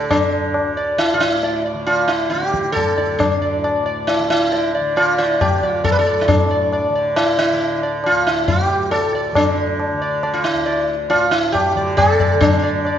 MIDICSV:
0, 0, Header, 1, 4, 480
1, 0, Start_track
1, 0, Tempo, 439560
1, 116, Time_signature, 7, 2, 24, 8
1, 14180, End_track
2, 0, Start_track
2, 0, Title_t, "Sitar"
2, 0, Program_c, 0, 104
2, 0, Note_on_c, 0, 69, 84
2, 115, Note_on_c, 0, 62, 69
2, 132, Note_off_c, 0, 69, 0
2, 797, Note_off_c, 0, 62, 0
2, 840, Note_on_c, 0, 74, 33
2, 1065, Note_off_c, 0, 74, 0
2, 1074, Note_on_c, 0, 64, 91
2, 1242, Note_on_c, 0, 65, 65
2, 1249, Note_off_c, 0, 64, 0
2, 1315, Note_on_c, 0, 64, 85
2, 1321, Note_off_c, 0, 65, 0
2, 1572, Note_on_c, 0, 74, 34
2, 1768, Note_off_c, 0, 64, 0
2, 1793, Note_off_c, 0, 74, 0
2, 1810, Note_on_c, 0, 74, 33
2, 2032, Note_off_c, 0, 74, 0
2, 2037, Note_on_c, 0, 65, 75
2, 2268, Note_on_c, 0, 64, 69
2, 2290, Note_off_c, 0, 65, 0
2, 2509, Note_on_c, 0, 67, 74
2, 2527, Note_off_c, 0, 64, 0
2, 2970, Note_off_c, 0, 67, 0
2, 2975, Note_on_c, 0, 69, 87
2, 3249, Note_on_c, 0, 74, 34
2, 3475, Note_off_c, 0, 74, 0
2, 3480, Note_on_c, 0, 62, 60
2, 3490, Note_off_c, 0, 69, 0
2, 3732, Note_on_c, 0, 74, 33
2, 3957, Note_off_c, 0, 74, 0
2, 3975, Note_on_c, 0, 74, 33
2, 4165, Note_off_c, 0, 62, 0
2, 4198, Note_off_c, 0, 74, 0
2, 4212, Note_on_c, 0, 74, 34
2, 4437, Note_off_c, 0, 74, 0
2, 4447, Note_on_c, 0, 64, 79
2, 4684, Note_off_c, 0, 64, 0
2, 4697, Note_on_c, 0, 64, 80
2, 4935, Note_on_c, 0, 74, 32
2, 5144, Note_off_c, 0, 64, 0
2, 5159, Note_off_c, 0, 74, 0
2, 5183, Note_on_c, 0, 74, 35
2, 5404, Note_off_c, 0, 74, 0
2, 5418, Note_on_c, 0, 74, 34
2, 5426, Note_on_c, 0, 65, 74
2, 5641, Note_off_c, 0, 74, 0
2, 5661, Note_on_c, 0, 64, 70
2, 5662, Note_on_c, 0, 74, 34
2, 5669, Note_off_c, 0, 65, 0
2, 5883, Note_off_c, 0, 74, 0
2, 5907, Note_off_c, 0, 64, 0
2, 5908, Note_on_c, 0, 67, 72
2, 5908, Note_on_c, 0, 74, 29
2, 6126, Note_off_c, 0, 74, 0
2, 6150, Note_on_c, 0, 74, 33
2, 6235, Note_off_c, 0, 67, 0
2, 6235, Note_on_c, 0, 65, 72
2, 6362, Note_off_c, 0, 74, 0
2, 6375, Note_on_c, 0, 74, 32
2, 6379, Note_off_c, 0, 65, 0
2, 6383, Note_on_c, 0, 69, 84
2, 6458, Note_off_c, 0, 69, 0
2, 6466, Note_on_c, 0, 71, 72
2, 6534, Note_off_c, 0, 71, 0
2, 6539, Note_on_c, 0, 69, 84
2, 6600, Note_off_c, 0, 74, 0
2, 6624, Note_on_c, 0, 74, 31
2, 6784, Note_on_c, 0, 64, 55
2, 6845, Note_off_c, 0, 74, 0
2, 6852, Note_off_c, 0, 64, 0
2, 6856, Note_on_c, 0, 62, 63
2, 6874, Note_off_c, 0, 69, 0
2, 7106, Note_on_c, 0, 74, 33
2, 7326, Note_off_c, 0, 74, 0
2, 7351, Note_on_c, 0, 74, 34
2, 7534, Note_off_c, 0, 62, 0
2, 7568, Note_off_c, 0, 74, 0
2, 7595, Note_on_c, 0, 74, 34
2, 7810, Note_off_c, 0, 74, 0
2, 7823, Note_on_c, 0, 64, 90
2, 8053, Note_off_c, 0, 64, 0
2, 8066, Note_on_c, 0, 64, 83
2, 8508, Note_off_c, 0, 64, 0
2, 8552, Note_on_c, 0, 74, 35
2, 8768, Note_off_c, 0, 74, 0
2, 8805, Note_on_c, 0, 65, 79
2, 9027, Note_on_c, 0, 64, 76
2, 9038, Note_off_c, 0, 65, 0
2, 9257, Note_on_c, 0, 67, 79
2, 9269, Note_off_c, 0, 64, 0
2, 9728, Note_off_c, 0, 67, 0
2, 9732, Note_on_c, 0, 69, 86
2, 9990, Note_on_c, 0, 74, 33
2, 10205, Note_off_c, 0, 74, 0
2, 10224, Note_on_c, 0, 62, 66
2, 10226, Note_off_c, 0, 69, 0
2, 10892, Note_off_c, 0, 62, 0
2, 10939, Note_on_c, 0, 74, 37
2, 11157, Note_off_c, 0, 74, 0
2, 11177, Note_on_c, 0, 74, 36
2, 11287, Note_on_c, 0, 65, 68
2, 11396, Note_off_c, 0, 74, 0
2, 11401, Note_on_c, 0, 64, 72
2, 11411, Note_off_c, 0, 65, 0
2, 11638, Note_on_c, 0, 74, 35
2, 11865, Note_off_c, 0, 74, 0
2, 11960, Note_off_c, 0, 64, 0
2, 12118, Note_on_c, 0, 65, 78
2, 12353, Note_on_c, 0, 64, 77
2, 12368, Note_off_c, 0, 65, 0
2, 12584, Note_on_c, 0, 67, 74
2, 12604, Note_off_c, 0, 64, 0
2, 12851, Note_on_c, 0, 74, 35
2, 13065, Note_off_c, 0, 67, 0
2, 13068, Note_off_c, 0, 74, 0
2, 13070, Note_on_c, 0, 69, 88
2, 13322, Note_on_c, 0, 74, 36
2, 13541, Note_off_c, 0, 74, 0
2, 13547, Note_on_c, 0, 62, 76
2, 13566, Note_off_c, 0, 69, 0
2, 13795, Note_on_c, 0, 74, 35
2, 14016, Note_off_c, 0, 74, 0
2, 14046, Note_on_c, 0, 74, 35
2, 14180, Note_off_c, 0, 62, 0
2, 14180, Note_off_c, 0, 74, 0
2, 14180, End_track
3, 0, Start_track
3, 0, Title_t, "Tanpura"
3, 0, Program_c, 1, 104
3, 0, Note_on_c, 1, 38, 52
3, 0, Note_on_c, 1, 45, 51
3, 0, Note_on_c, 1, 50, 55
3, 549, Note_off_c, 1, 38, 0
3, 553, Note_on_c, 1, 38, 57
3, 1235, Note_off_c, 1, 45, 0
3, 1239, Note_on_c, 1, 45, 55
3, 1899, Note_off_c, 1, 50, 0
3, 1899, Note_on_c, 1, 50, 52
3, 2558, Note_off_c, 1, 50, 0
3, 2558, Note_on_c, 1, 50, 54
3, 3221, Note_off_c, 1, 38, 0
3, 3226, Note_on_c, 1, 38, 55
3, 3888, Note_off_c, 1, 45, 0
3, 3892, Note_on_c, 1, 45, 56
3, 4568, Note_off_c, 1, 50, 0
3, 4568, Note_on_c, 1, 50, 52
3, 5236, Note_off_c, 1, 50, 0
3, 5236, Note_on_c, 1, 50, 55
3, 5899, Note_off_c, 1, 38, 0
3, 5903, Note_on_c, 1, 38, 53
3, 6562, Note_off_c, 1, 45, 0
3, 6567, Note_on_c, 1, 45, 53
3, 6865, Note_off_c, 1, 45, 0
3, 6865, Note_on_c, 1, 45, 49
3, 7528, Note_off_c, 1, 50, 0
3, 7528, Note_on_c, 1, 50, 56
3, 8204, Note_off_c, 1, 50, 0
3, 8204, Note_on_c, 1, 50, 54
3, 8851, Note_off_c, 1, 38, 0
3, 8855, Note_on_c, 1, 38, 60
3, 9515, Note_off_c, 1, 45, 0
3, 9515, Note_on_c, 1, 45, 53
3, 10177, Note_off_c, 1, 50, 0
3, 10177, Note_on_c, 1, 50, 61
3, 10850, Note_off_c, 1, 50, 0
3, 10850, Note_on_c, 1, 50, 54
3, 11505, Note_off_c, 1, 38, 0
3, 11509, Note_on_c, 1, 38, 58
3, 12154, Note_off_c, 1, 45, 0
3, 12159, Note_on_c, 1, 45, 58
3, 12824, Note_off_c, 1, 50, 0
3, 12824, Note_on_c, 1, 50, 64
3, 13474, Note_off_c, 1, 50, 0
3, 13474, Note_on_c, 1, 50, 59
3, 14132, Note_off_c, 1, 38, 0
3, 14136, Note_on_c, 1, 38, 57
3, 14180, Note_off_c, 1, 38, 0
3, 14180, Note_off_c, 1, 45, 0
3, 14180, Note_off_c, 1, 50, 0
3, 14180, End_track
4, 0, Start_track
4, 0, Title_t, "Tabla"
4, 115, Note_on_c, 9, 60, 91
4, 115, Note_on_c, 9, 64, 81
4, 225, Note_off_c, 9, 60, 0
4, 225, Note_off_c, 9, 64, 0
4, 593, Note_on_c, 9, 60, 68
4, 702, Note_off_c, 9, 60, 0
4, 1082, Note_on_c, 9, 60, 69
4, 1191, Note_off_c, 9, 60, 0
4, 1563, Note_on_c, 9, 63, 67
4, 1673, Note_off_c, 9, 63, 0
4, 2047, Note_on_c, 9, 60, 69
4, 2156, Note_off_c, 9, 60, 0
4, 2532, Note_on_c, 9, 62, 65
4, 2642, Note_off_c, 9, 62, 0
4, 2654, Note_on_c, 9, 62, 52
4, 2763, Note_off_c, 9, 62, 0
4, 2771, Note_on_c, 9, 37, 54
4, 2880, Note_off_c, 9, 37, 0
4, 2893, Note_on_c, 9, 62, 56
4, 3003, Note_off_c, 9, 62, 0
4, 3017, Note_on_c, 9, 60, 70
4, 3017, Note_on_c, 9, 64, 62
4, 3127, Note_off_c, 9, 60, 0
4, 3127, Note_off_c, 9, 64, 0
4, 3255, Note_on_c, 9, 62, 54
4, 3364, Note_off_c, 9, 62, 0
4, 3494, Note_on_c, 9, 60, 87
4, 3494, Note_on_c, 9, 64, 82
4, 3603, Note_off_c, 9, 60, 0
4, 3603, Note_off_c, 9, 64, 0
4, 3978, Note_on_c, 9, 60, 73
4, 4087, Note_off_c, 9, 60, 0
4, 4461, Note_on_c, 9, 60, 68
4, 4570, Note_off_c, 9, 60, 0
4, 4705, Note_on_c, 9, 60, 55
4, 4814, Note_off_c, 9, 60, 0
4, 4946, Note_on_c, 9, 63, 70
4, 5055, Note_off_c, 9, 63, 0
4, 5428, Note_on_c, 9, 60, 68
4, 5537, Note_off_c, 9, 60, 0
4, 5908, Note_on_c, 9, 60, 69
4, 5908, Note_on_c, 9, 64, 61
4, 6018, Note_off_c, 9, 60, 0
4, 6018, Note_off_c, 9, 64, 0
4, 6144, Note_on_c, 9, 64, 51
4, 6253, Note_off_c, 9, 64, 0
4, 6382, Note_on_c, 9, 60, 71
4, 6382, Note_on_c, 9, 64, 62
4, 6491, Note_off_c, 9, 60, 0
4, 6491, Note_off_c, 9, 64, 0
4, 6624, Note_on_c, 9, 62, 53
4, 6733, Note_off_c, 9, 62, 0
4, 6863, Note_on_c, 9, 60, 99
4, 6863, Note_on_c, 9, 64, 84
4, 6973, Note_off_c, 9, 60, 0
4, 6973, Note_off_c, 9, 64, 0
4, 7345, Note_on_c, 9, 60, 75
4, 7454, Note_off_c, 9, 60, 0
4, 7822, Note_on_c, 9, 60, 72
4, 7931, Note_off_c, 9, 60, 0
4, 8304, Note_on_c, 9, 63, 72
4, 8413, Note_off_c, 9, 63, 0
4, 8540, Note_on_c, 9, 60, 55
4, 8650, Note_off_c, 9, 60, 0
4, 8778, Note_on_c, 9, 60, 73
4, 8887, Note_off_c, 9, 60, 0
4, 9259, Note_on_c, 9, 63, 70
4, 9259, Note_on_c, 9, 64, 65
4, 9368, Note_off_c, 9, 63, 0
4, 9368, Note_off_c, 9, 64, 0
4, 9738, Note_on_c, 9, 60, 68
4, 9848, Note_off_c, 9, 60, 0
4, 10214, Note_on_c, 9, 60, 94
4, 10214, Note_on_c, 9, 64, 90
4, 10323, Note_off_c, 9, 60, 0
4, 10323, Note_off_c, 9, 64, 0
4, 10696, Note_on_c, 9, 60, 74
4, 10805, Note_off_c, 9, 60, 0
4, 11173, Note_on_c, 9, 60, 72
4, 11282, Note_off_c, 9, 60, 0
4, 11654, Note_on_c, 9, 63, 69
4, 11764, Note_off_c, 9, 63, 0
4, 12128, Note_on_c, 9, 60, 75
4, 12237, Note_off_c, 9, 60, 0
4, 12607, Note_on_c, 9, 60, 69
4, 12607, Note_on_c, 9, 64, 65
4, 12716, Note_off_c, 9, 60, 0
4, 12716, Note_off_c, 9, 64, 0
4, 12843, Note_on_c, 9, 64, 51
4, 12952, Note_off_c, 9, 64, 0
4, 13082, Note_on_c, 9, 60, 71
4, 13082, Note_on_c, 9, 64, 65
4, 13191, Note_off_c, 9, 60, 0
4, 13191, Note_off_c, 9, 64, 0
4, 13322, Note_on_c, 9, 64, 50
4, 13431, Note_off_c, 9, 64, 0
4, 13555, Note_on_c, 9, 60, 92
4, 13555, Note_on_c, 9, 64, 87
4, 13665, Note_off_c, 9, 60, 0
4, 13665, Note_off_c, 9, 64, 0
4, 14033, Note_on_c, 9, 60, 71
4, 14142, Note_off_c, 9, 60, 0
4, 14180, End_track
0, 0, End_of_file